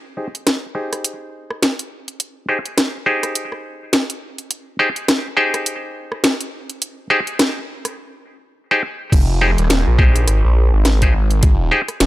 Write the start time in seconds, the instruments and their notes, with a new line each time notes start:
0.17 clav D#4 G4 G#4 C5
0.35 closed hi-hat
0.47 snare, closed hi-hat
0.75 clav D#4 G4 G#4 C5
0.93 cross-stick, closed hi-hat
1.04 closed hi-hat
1.50 cross-stick
1.63 snare, closed hi-hat
1.79 closed hi-hat
2.08 closed hi-hat
2.20 closed hi-hat
2.49 clav D#4 G4 G#4 C5
2.65 closed hi-hat
2.78 snare, closed hi-hat
3.06 clav D#4 G4 G#4 C5
3.23 cross-stick, closed hi-hat
3.35 closed hi-hat
3.52 cross-stick
3.93 snare, closed hi-hat
4.10 closed hi-hat
4.38 closed hi-hat
4.51 closed hi-hat
4.79 clav D#4 G4 G#4 C5
4.96 closed hi-hat
5.08 snare, closed hi-hat
5.37 clav D#4 G4 G#4 C5
5.54 cross-stick, closed hi-hat
5.66 closed hi-hat
6.12 cross-stick
6.24 snare, closed hi-hat
6.41 closed hi-hat
6.70 closed hi-hat
6.82 closed hi-hat
7.10 clav D#4 G4 G#4 C5
7.27 closed hi-hat
7.39 snare, closed hi-hat
7.85 cross-stick, closed hi-hat
8.71 clav D#4 G4 G#4 C5
9.12 detuned saw bass F1, kick, closed hi-hat, crash
9.41 clav D#4 G4 G#4 C5
9.58 detuned saw bass D#1, closed hi-hat
9.64 cross-stick
9.70 snare, closed hi-hat
9.87 detuned saw bass A#1
9.99 clav D#4 G4 G#4 C5, kick
10.16 closed hi-hat
10.28 detuned saw bass G#1, cross-stick, closed hi-hat
10.45 detuned saw bass A#1
10.73 detuned saw bass G#1
10.85 snare, closed hi-hat
11.02 clav D#4 G4 G#4 C5, kick, closed hi-hat
11.14 detuned saw bass G#1
11.31 closed hi-hat
11.43 kick, closed hi-hat
11.71 clav D#4 G4 G#4 C5
11.88 cross-stick, closed hi-hat
12.00 detuned saw bass D#1, snare, closed hi-hat